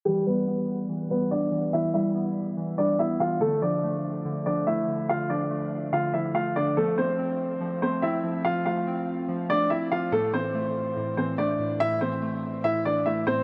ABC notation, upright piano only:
X:1
M:4/4
L:1/8
Q:1/4=143
K:Ephr
V:1 name="Upright piano"
[G,G] [B,B]4 [B,B] [Dd]2 | [Ee] [Ee]4 [Dd] [Ee] [Ff] | [A,A] [Dd]4 [Dd] [Ee]2 | [Ff] [Dd]3 [Ff] [Ee] [Ff] [Dd] |
[A,A] [Cc]4 [Cc] [Ee]2 | [Ff] [Ff]4 [Dd] [Ee] [Ff] | [A,A] [Cc]4 [Cc] [Dd]2 | [Ee] [Cc]3 [Ee] [Dd] [Ee] [Cc] |]